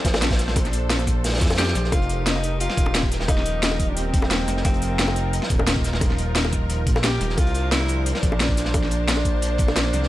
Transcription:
Already playing: analog synth pad F3 D4 A4 C5, tenor saxophone C4
0.05 analog synth bass A#1, kick, snare, closed hi-hat
0.14 snare, closed hi-hat, high bongo
0.22 snare, closed hi-hat
0.31 kick, snare, closed hi-hat
0.39 snare, closed hi-hat
0.48 snare
0.56 kick, closed hi-hat, high bongo
0.65 snare, closed hi-hat
0.73 closed hi-hat
0.90 snare, closed hi-hat
0.99 closed hi-hat, high bongo
1.07 kick, snare, closed hi-hat
1.24 snare, closed hi-hat
1.28 snare, closed hi-hat
1.34 snare, closed hi-hat
1.37 snare, closed hi-hat
1.41 analog synth bass F2, kick, snare, closed hi-hat
1.46 snare, closed hi-hat
1.50 snare, closed hi-hat, high bongo
1.55 snare, closed hi-hat
1.58 tenor saxophone G4, snare, closed hi-hat
1.62 snare, closed hi-hat
1.67 snare, closed hi-hat
1.75 analog synth bass A#1, snare, closed hi-hat
1.84 snare
1.92 analog synth bass F1, analog synth pad F3 D#4 G4 A#4, tenor saxophone F4, kick, closed hi-hat, high bongo
2.02 closed hi-hat
2.10 closed hi-hat
2.26 tenor saxophone D#4, snare, closed hi-hat
2.36 high bongo
2.44 closed hi-hat
2.60 tenor saxophone F4, closed hi-hat
2.69 snare
2.77 analog synth bass D#1, kick, closed hi-hat
2.86 high bongo
2.94 snare, closed hi-hat
3.03 kick
3.12 snare, closed hi-hat
3.20 snare
3.28 tenor saxophone D#4, kick, closed hi-hat, high bongo
3.38 snare
3.46 closed hi-hat
3.63 snare, closed hi-hat
3.71 high bongo
3.80 kick, closed hi-hat
3.90 tenor saxophone D4
3.97 tenor saxophone C4, closed hi-hat
4.14 kick, closed hi-hat
4.22 snare, high bongo
4.31 snare, closed hi-hat
4.48 analog synth bass F1, snare, closed hi-hat
4.56 snare
4.65 analog synth bass F1, tenor saxophone C4, analog synth pad F4, kick, closed hi-hat, high bongo
4.74 closed hi-hat
4.82 closed hi-hat
4.99 snare, closed hi-hat
5.08 high bongo
5.16 closed hi-hat
5.33 closed hi-hat
5.42 snare
5.50 analog synth bass D#1, kick, closed hi-hat
5.59 high bongo
5.67 snare, closed hi-hat
5.76 kick
5.84 snare, closed hi-hat
5.93 snare
6.01 kick, closed hi-hat, high bongo
6.10 snare
6.18 closed hi-hat
6.35 snare, closed hi-hat
6.45 high bongo
6.53 kick, snare, closed hi-hat
6.70 closed hi-hat
6.87 analog synth bass A#1, kick, closed hi-hat
6.95 snare, high bongo
7.03 tenor saxophone G4, snare, closed hi-hat
7.21 analog synth bass D#1, snare, closed hi-hat
7.29 snare
7.37 analog synth bass C2, analog synth pad F3 D4 C5, tenor saxophone F4, kick, closed hi-hat, high bongo
7.47 closed hi-hat
7.54 closed hi-hat
7.71 tenor saxophone E4, snare, closed hi-hat
7.81 high bongo
7.88 closed hi-hat
8.06 tenor saxophone D4, closed hi-hat
8.13 tenor saxophone E4, snare
8.20 analog synth bass A#1, tenor saxophone D4, kick, closed hi-hat
8.32 high bongo
8.40 snare, closed hi-hat
8.49 kick
8.57 snare, closed hi-hat
8.65 snare
8.74 kick, closed hi-hat, high bongo
8.83 snare
8.91 closed hi-hat
9.08 snare, closed hi-hat
9.17 high bongo
9.25 kick, closed hi-hat
9.42 closed hi-hat
9.58 kick, closed hi-hat
9.67 snare, high bongo
9.76 snare, closed hi-hat
9.93 analog synth bass C2, snare, closed hi-hat
10.03 snare

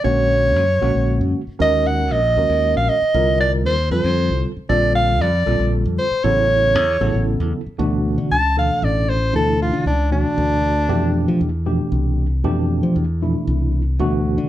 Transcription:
0.04 fingered electric bass A#1, tine electric piano D3 G#3 A#3 C#4 F#4, soprano saxophone C#5
0.56 fingered electric bass F#2
0.82 fingered electric bass A#1, tine electric piano D3 G#3 A#3 C#4 F#4
0.95 fingered electric bass A#1
1.21 fingered electric bass F#2
1.47 muted fingered electric bass stroke
1.59 fingered electric bass D#2, tine electric piano D#3 G#3 C#4 F#4 A#4, soprano saxophone D#5
1.87 soprano saxophone F#5
2.11 fingered electric bass A#1, soprano saxophone D#5
2.37 fingered electric bass D#2, tine electric piano D#3 G#3 C#4 F#4 A#4
2.49 fingered electric bass D#2
2.76 fingered electric bass A#1, soprano saxophone F5
2.89 soprano saxophone D#5
3.02 muted fingered electric bass stroke
3.14 fingered electric bass C2, tine electric piano D3 G3 C4 F4 A#4
3.40 soprano saxophone D5
3.66 fingered electric bass D#2, soprano saxophone C5
3.91 fingered electric bass F2, tine electric piano D3 G3 C4 F4 A4, soprano saxophone C5
4.04 fingered electric bass F2
4.30 fingered electric bass C2
4.57 muted fingered electric bass stroke
4.69 fingered electric bass A#1, tine electric piano D3 G3 C4 F4 A4, soprano saxophone D5
4.95 soprano saxophone F5
5.21 fingered electric bass F2, soprano saxophone D5
5.46 fingered electric bass A#1, tine electric piano D3 G3 C4 F4 A4
5.59 fingered electric bass A#1
5.85 fingered electric bass F2
5.98 soprano saxophone C5
6.11 muted fingered electric bass stroke
6.24 fingered electric bass A1, tine electric piano C#3 F#3 B3 E4 A4, soprano saxophone C#5
6.75 fingered electric bass E2
7.01 fingered electric bass A1, tine electric piano C#3 F#3 B3 E4 A4
7.14 fingered electric bass A1
7.40 fingered electric bass E2
7.66 muted fingered electric bass stroke
7.78 fingered electric bass D2, tine electric piano B2 E3 A3 D4 F#4
8.18 fingered electric bass D3
8.31 fingered electric bass C#2, soprano saxophone A5
8.57 fingered electric bass D2, tine electric piano B2 E3 A3 D4 A4, soprano saxophone F5
8.82 fingered electric bass A1, soprano saxophone D5
9.09 soprano saxophone C5
9.33 fingered electric bass D2, tine electric piano B2 E3 A3 D4 E4, soprano saxophone A4
9.62 soprano saxophone F4
9.73 fingered electric bass D3
9.86 fingered electric bass C#2, soprano saxophone D4
10.11 fingered electric bass D2, tine electric piano B2 E3 A3 D4 F#4, soprano saxophone D4
10.38 fingered electric bass D2
10.89 fingered electric bass F2, tine electric piano B2 E3 A3 D4 G4
11.28 fingered electric bass F3
11.41 fingered electric bass E2
11.66 fingered electric bass F2, tine electric piano B2 E3 A3 D4 G4
11.92 fingered electric bass C2
12.44 fingered electric bass F2, tine electric piano B2 E3 A3 D4 G4
12.83 fingered electric bass F3
12.96 fingered electric bass E2
13.22 fingered electric bass F2, tine electric piano B2 E3 A3 D4 E4
13.47 fingered electric bass C2
13.99 fingered electric bass D2, tine electric piano B2 E3 A3 D4 F#4
14.38 fingered electric bass D3

